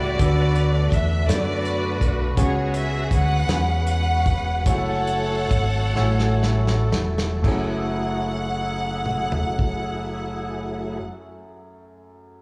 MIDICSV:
0, 0, Header, 1, 6, 480
1, 0, Start_track
1, 0, Key_signature, 3, "minor"
1, 0, Tempo, 725514
1, 129, Time_signature, 6, 3, 24, 8
1, 1569, Tempo, 746269
1, 2529, Tempo, 793651
1, 3009, Tempo, 846262
1, 3489, Tempo, 917431
1, 3969, Tempo, 1015228
1, 4449, Tempo, 1073345
1, 6677, End_track
2, 0, Start_track
2, 0, Title_t, "String section"
2, 0, Program_c, 0, 48
2, 0, Note_on_c, 0, 64, 65
2, 0, Note_on_c, 0, 66, 66
2, 0, Note_on_c, 0, 67, 66
2, 0, Note_on_c, 0, 71, 61
2, 0, Note_on_c, 0, 74, 87
2, 109, Note_off_c, 0, 67, 0
2, 111, Note_off_c, 0, 64, 0
2, 590, Note_off_c, 0, 66, 0
2, 590, Note_off_c, 0, 71, 0
2, 613, Note_off_c, 0, 74, 0
2, 614, Note_on_c, 0, 76, 74
2, 851, Note_off_c, 0, 76, 0
2, 857, Note_on_c, 0, 74, 80
2, 864, Note_on_c, 0, 66, 64
2, 867, Note_on_c, 0, 71, 67
2, 1394, Note_off_c, 0, 74, 0
2, 1551, Note_off_c, 0, 66, 0
2, 1553, Note_off_c, 0, 71, 0
2, 1582, Note_on_c, 0, 73, 71
2, 1589, Note_on_c, 0, 66, 57
2, 1590, Note_on_c, 0, 68, 58
2, 1795, Note_off_c, 0, 73, 0
2, 1817, Note_on_c, 0, 76, 73
2, 2033, Note_off_c, 0, 76, 0
2, 2055, Note_on_c, 0, 78, 88
2, 2060, Note_on_c, 0, 71, 66
2, 2269, Note_off_c, 0, 66, 0
2, 2269, Note_off_c, 0, 68, 0
2, 2510, Note_off_c, 0, 78, 0
2, 2542, Note_off_c, 0, 71, 0
2, 2544, Note_on_c, 0, 78, 90
2, 2549, Note_on_c, 0, 71, 58
2, 2993, Note_off_c, 0, 78, 0
2, 2996, Note_off_c, 0, 71, 0
2, 3023, Note_on_c, 0, 78, 78
2, 3027, Note_on_c, 0, 69, 63
2, 3031, Note_on_c, 0, 73, 59
2, 4190, Note_off_c, 0, 78, 0
2, 4191, Note_off_c, 0, 69, 0
2, 4193, Note_off_c, 0, 73, 0
2, 4460, Note_on_c, 0, 78, 72
2, 6041, Note_off_c, 0, 78, 0
2, 6677, End_track
3, 0, Start_track
3, 0, Title_t, "Grand piano"
3, 0, Program_c, 1, 0
3, 0, Control_c, 1, 64, 127
3, 0, Note_on_c, 1, 45, 53
3, 0, Note_on_c, 1, 57, 59
3, 0, Note_on_c, 1, 61, 46
3, 0, Note_on_c, 1, 67, 51
3, 0, Note_on_c, 1, 71, 54
3, 0, Note_on_c, 1, 78, 51
3, 104, Note_off_c, 1, 45, 0
3, 126, Note_on_c, 1, 59, 66
3, 126, Note_on_c, 1, 62, 54
3, 129, Note_on_c, 1, 66, 62
3, 130, Note_on_c, 1, 50, 53
3, 130, Note_on_c, 1, 69, 60
3, 132, Note_on_c, 1, 74, 65
3, 136, Note_off_c, 1, 67, 0
3, 136, Control_c, 1, 64, 0
3, 137, Note_off_c, 1, 71, 0
3, 140, Note_off_c, 1, 57, 0
3, 140, Note_off_c, 1, 61, 0
3, 141, Note_off_c, 1, 78, 0
3, 270, Control_c, 1, 64, 127
3, 673, Note_off_c, 1, 59, 0
3, 673, Note_off_c, 1, 62, 0
3, 674, Note_off_c, 1, 66, 0
3, 675, Note_off_c, 1, 69, 0
3, 675, Note_off_c, 1, 74, 0
3, 823, Note_off_c, 1, 50, 0
3, 844, Note_on_c, 1, 62, 48
3, 845, Note_on_c, 1, 59, 58
3, 847, Note_on_c, 1, 66, 51
3, 849, Note_on_c, 1, 69, 49
3, 852, Note_on_c, 1, 73, 47
3, 894, Note_off_c, 1, 73, 0
3, 896, Note_on_c, 1, 74, 62
3, 1393, Note_off_c, 1, 59, 0
3, 1393, Note_off_c, 1, 62, 0
3, 1394, Note_off_c, 1, 66, 0
3, 1395, Note_off_c, 1, 69, 0
3, 1419, Note_off_c, 1, 74, 0
3, 1568, Note_on_c, 1, 59, 63
3, 1571, Note_on_c, 1, 49, 54
3, 1571, Note_on_c, 1, 61, 65
3, 1572, Note_on_c, 1, 66, 58
3, 1574, Note_on_c, 1, 68, 62
3, 1575, Note_on_c, 1, 73, 72
3, 1579, Control_c, 1, 64, 0
3, 1696, Control_c, 1, 64, 127
3, 2108, Note_off_c, 1, 59, 0
3, 2109, Note_off_c, 1, 61, 0
3, 2110, Note_off_c, 1, 66, 0
3, 2111, Note_off_c, 1, 68, 0
3, 2111, Note_off_c, 1, 73, 0
3, 2259, Note_off_c, 1, 49, 0
3, 2288, Note_on_c, 1, 59, 54
3, 2289, Note_on_c, 1, 61, 51
3, 2291, Note_on_c, 1, 66, 50
3, 2293, Note_on_c, 1, 68, 49
3, 2294, Note_on_c, 1, 71, 64
3, 2835, Note_off_c, 1, 59, 0
3, 2835, Note_off_c, 1, 61, 0
3, 2836, Note_off_c, 1, 66, 0
3, 2837, Note_off_c, 1, 68, 0
3, 2837, Note_off_c, 1, 71, 0
3, 3008, Note_on_c, 1, 56, 50
3, 3011, Note_on_c, 1, 64, 52
3, 3011, Note_on_c, 1, 66, 55
3, 3012, Note_on_c, 1, 80, 58
3, 3017, Note_on_c, 1, 73, 76
3, 3018, Control_c, 1, 64, 0
3, 3046, Note_on_c, 1, 57, 69
3, 3051, Note_off_c, 1, 56, 0
3, 3125, Control_c, 1, 64, 127
3, 3554, Note_off_c, 1, 64, 0
3, 3554, Note_off_c, 1, 66, 0
3, 3554, Note_off_c, 1, 80, 0
3, 3556, Note_off_c, 1, 73, 0
3, 3570, Note_off_c, 1, 57, 0
3, 3724, Note_on_c, 1, 57, 70
3, 3726, Note_on_c, 1, 64, 61
3, 3728, Note_on_c, 1, 66, 57
3, 3730, Note_on_c, 1, 80, 59
3, 3731, Note_on_c, 1, 73, 75
3, 4269, Note_off_c, 1, 57, 0
3, 4270, Note_off_c, 1, 64, 0
3, 4271, Note_off_c, 1, 66, 0
3, 4271, Note_off_c, 1, 80, 0
3, 4272, Note_off_c, 1, 73, 0
3, 4443, Note_on_c, 1, 57, 60
3, 4449, Note_on_c, 1, 64, 63
3, 4454, Note_on_c, 1, 42, 67
3, 4455, Control_c, 1, 64, 0
3, 4455, Note_on_c, 1, 66, 54
3, 4461, Note_on_c, 1, 68, 56
3, 4467, Note_on_c, 1, 73, 65
3, 4528, Control_c, 1, 64, 127
3, 6025, Note_off_c, 1, 57, 0
3, 6030, Note_off_c, 1, 64, 0
3, 6035, Note_off_c, 1, 42, 0
3, 6036, Note_off_c, 1, 66, 0
3, 6042, Note_off_c, 1, 68, 0
3, 6049, Note_off_c, 1, 73, 0
3, 6677, End_track
4, 0, Start_track
4, 0, Title_t, "Tonewheel organ"
4, 0, Program_c, 2, 16
4, 0, Note_on_c, 2, 49, 52
4, 0, Note_on_c, 2, 55, 58
4, 0, Note_on_c, 2, 71, 59
4, 0, Note_on_c, 2, 78, 50
4, 122, Note_off_c, 2, 71, 0
4, 127, Note_on_c, 2, 62, 54
4, 129, Note_off_c, 2, 49, 0
4, 129, Note_off_c, 2, 55, 0
4, 129, Note_on_c, 2, 66, 56
4, 130, Note_off_c, 2, 78, 0
4, 130, Note_on_c, 2, 71, 69
4, 131, Note_on_c, 2, 57, 57
4, 1543, Note_off_c, 2, 62, 0
4, 1543, Note_off_c, 2, 66, 0
4, 1544, Note_off_c, 2, 71, 0
4, 1545, Note_off_c, 2, 57, 0
4, 1582, Note_on_c, 2, 66, 50
4, 1583, Note_on_c, 2, 56, 61
4, 1583, Note_on_c, 2, 61, 53
4, 1584, Note_on_c, 2, 71, 64
4, 2992, Note_off_c, 2, 66, 0
4, 2993, Note_off_c, 2, 56, 0
4, 2993, Note_off_c, 2, 61, 0
4, 2993, Note_off_c, 2, 71, 0
4, 3005, Note_on_c, 2, 54, 56
4, 3007, Note_on_c, 2, 64, 52
4, 3008, Note_on_c, 2, 56, 43
4, 3009, Note_on_c, 2, 69, 62
4, 3042, Note_on_c, 2, 57, 50
4, 3051, Note_off_c, 2, 56, 0
4, 4429, Note_off_c, 2, 54, 0
4, 4430, Note_off_c, 2, 64, 0
4, 4430, Note_off_c, 2, 69, 0
4, 4444, Note_off_c, 2, 57, 0
4, 4453, Note_on_c, 2, 64, 61
4, 4456, Note_on_c, 2, 57, 70
4, 4456, Note_on_c, 2, 68, 73
4, 4457, Note_on_c, 2, 54, 66
4, 6034, Note_off_c, 2, 64, 0
4, 6037, Note_off_c, 2, 57, 0
4, 6037, Note_off_c, 2, 68, 0
4, 6039, Note_off_c, 2, 54, 0
4, 6677, End_track
5, 0, Start_track
5, 0, Title_t, "Fingered electric bass"
5, 0, Program_c, 3, 33
5, 0, Note_on_c, 3, 37, 80
5, 109, Note_off_c, 3, 37, 0
5, 128, Note_on_c, 3, 38, 85
5, 582, Note_off_c, 3, 38, 0
5, 609, Note_on_c, 3, 40, 81
5, 830, Note_off_c, 3, 40, 0
5, 848, Note_on_c, 3, 42, 85
5, 1303, Note_off_c, 3, 42, 0
5, 1330, Note_on_c, 3, 35, 69
5, 1551, Note_off_c, 3, 35, 0
5, 1569, Note_on_c, 3, 37, 91
5, 2017, Note_off_c, 3, 37, 0
5, 2042, Note_on_c, 3, 38, 68
5, 2265, Note_off_c, 3, 38, 0
5, 2281, Note_on_c, 3, 40, 78
5, 2766, Note_on_c, 3, 28, 74
5, 2775, Note_off_c, 3, 40, 0
5, 2990, Note_off_c, 3, 28, 0
5, 3009, Note_on_c, 3, 30, 89
5, 3467, Note_off_c, 3, 30, 0
5, 3491, Note_on_c, 3, 32, 65
5, 3706, Note_off_c, 3, 32, 0
5, 3727, Note_on_c, 3, 33, 78
5, 4185, Note_off_c, 3, 33, 0
5, 4203, Note_on_c, 3, 28, 76
5, 4431, Note_off_c, 3, 28, 0
5, 4451, Note_on_c, 3, 30, 81
5, 6032, Note_off_c, 3, 30, 0
5, 6677, End_track
6, 0, Start_track
6, 0, Title_t, "Drums"
6, 128, Note_on_c, 9, 42, 73
6, 129, Note_on_c, 9, 36, 89
6, 194, Note_off_c, 9, 42, 0
6, 195, Note_off_c, 9, 36, 0
6, 366, Note_on_c, 9, 42, 50
6, 433, Note_off_c, 9, 42, 0
6, 609, Note_on_c, 9, 36, 81
6, 613, Note_on_c, 9, 42, 51
6, 675, Note_off_c, 9, 36, 0
6, 679, Note_off_c, 9, 42, 0
6, 854, Note_on_c, 9, 42, 75
6, 856, Note_on_c, 9, 38, 69
6, 920, Note_off_c, 9, 42, 0
6, 923, Note_off_c, 9, 38, 0
6, 1094, Note_on_c, 9, 42, 39
6, 1160, Note_off_c, 9, 42, 0
6, 1331, Note_on_c, 9, 36, 65
6, 1334, Note_on_c, 9, 42, 42
6, 1397, Note_off_c, 9, 36, 0
6, 1400, Note_off_c, 9, 42, 0
6, 1570, Note_on_c, 9, 36, 86
6, 1570, Note_on_c, 9, 42, 82
6, 1634, Note_off_c, 9, 36, 0
6, 1634, Note_off_c, 9, 42, 0
6, 1806, Note_on_c, 9, 42, 56
6, 1870, Note_off_c, 9, 42, 0
6, 2044, Note_on_c, 9, 36, 81
6, 2047, Note_on_c, 9, 42, 54
6, 2108, Note_off_c, 9, 36, 0
6, 2111, Note_off_c, 9, 42, 0
6, 2287, Note_on_c, 9, 42, 61
6, 2290, Note_on_c, 9, 38, 86
6, 2351, Note_off_c, 9, 42, 0
6, 2354, Note_off_c, 9, 38, 0
6, 2531, Note_on_c, 9, 42, 47
6, 2591, Note_off_c, 9, 42, 0
6, 2767, Note_on_c, 9, 42, 42
6, 2768, Note_on_c, 9, 36, 80
6, 2828, Note_off_c, 9, 36, 0
6, 2828, Note_off_c, 9, 42, 0
6, 3010, Note_on_c, 9, 36, 83
6, 3010, Note_on_c, 9, 42, 72
6, 3066, Note_off_c, 9, 42, 0
6, 3067, Note_off_c, 9, 36, 0
6, 3245, Note_on_c, 9, 42, 51
6, 3301, Note_off_c, 9, 42, 0
6, 3491, Note_on_c, 9, 36, 79
6, 3491, Note_on_c, 9, 42, 56
6, 3544, Note_off_c, 9, 36, 0
6, 3544, Note_off_c, 9, 42, 0
6, 3729, Note_on_c, 9, 38, 46
6, 3781, Note_off_c, 9, 38, 0
6, 3849, Note_on_c, 9, 38, 50
6, 3901, Note_off_c, 9, 38, 0
6, 3972, Note_on_c, 9, 38, 62
6, 4020, Note_off_c, 9, 38, 0
6, 4088, Note_on_c, 9, 38, 58
6, 4136, Note_off_c, 9, 38, 0
6, 4207, Note_on_c, 9, 38, 78
6, 4254, Note_off_c, 9, 38, 0
6, 4329, Note_on_c, 9, 38, 70
6, 4376, Note_off_c, 9, 38, 0
6, 4451, Note_on_c, 9, 36, 75
6, 4452, Note_on_c, 9, 49, 64
6, 4496, Note_off_c, 9, 36, 0
6, 4497, Note_off_c, 9, 49, 0
6, 5174, Note_on_c, 9, 47, 41
6, 5218, Note_off_c, 9, 47, 0
6, 5291, Note_on_c, 9, 43, 60
6, 5336, Note_off_c, 9, 43, 0
6, 5411, Note_on_c, 9, 36, 70
6, 5456, Note_off_c, 9, 36, 0
6, 6677, End_track
0, 0, End_of_file